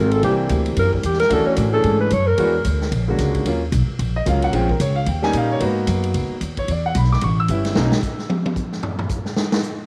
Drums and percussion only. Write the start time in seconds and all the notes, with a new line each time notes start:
0.11 ride
0.23 kick, ride
0.49 kick, hi-hat pedal, ride
0.66 ride
0.76 kick, ride
0.93 kick
1.03 kick, hi-hat pedal, ride
1.13 snare
1.19 snare, ride
1.30 kick, ride
1.56 kick, hi-hat pedal, ride
1.83 kick, ride
2.10 kick, hi-hat pedal, ride
2.38 kick, ride
2.64 kick, hi-hat pedal, ride
2.81 snare
2.92 kick, ride
3.18 kick, snare, hi-hat pedal, ride
3.35 kick, ride
3.45 kick, ride
3.72 kick, hi-hat pedal, ride
3.99 kick, ride
4.26 kick, hi-hat pedal, ride
4.42 ride
4.53 kick, ride
4.69 kick
4.80 kick, hi-hat pedal, ride
5.06 kick, ride
5.23 snare
5.33 kick, hi-hat pedal, ride
5.60 kick, ride
5.87 kick, hi-hat pedal, ride
6.03 ride
6.14 kick, ride
6.41 kick, hi-hat pedal, ride
6.57 kick, ride
6.68 kick, ride
6.95 kick, hi-hat pedal, ride
7.04 snare
7.13 snare
7.21 kick, ride
7.48 kick, hi-hat pedal, ride
7.65 snare, ride
7.75 snare
7.92 snare
8.02 kick, hi-hat pedal
8.19 snare
8.30 high tom
8.46 high tom
8.56 kick, hi-hat pedal
8.72 snare
8.83 floor tom
8.99 floor tom
9.09 kick, hi-hat pedal
9.26 snare
9.36 snare
9.52 snare
9.63 hi-hat pedal